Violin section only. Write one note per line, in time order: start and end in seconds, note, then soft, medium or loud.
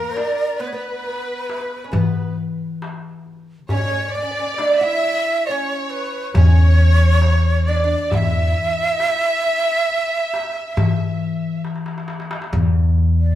0.00 0.56 A#4 medium
0.59 0.73 B4 medium
0.74 2.33 B4 medium
3.69 4.11 C#5 medium
4.12 4.79 D5 loud
4.79 5.46 E5 loud
5.45 6.30 C#5 medium
6.35 7.64 C#5 loud
7.68 8.12 D5 medium
8.12 11.65 E5 medium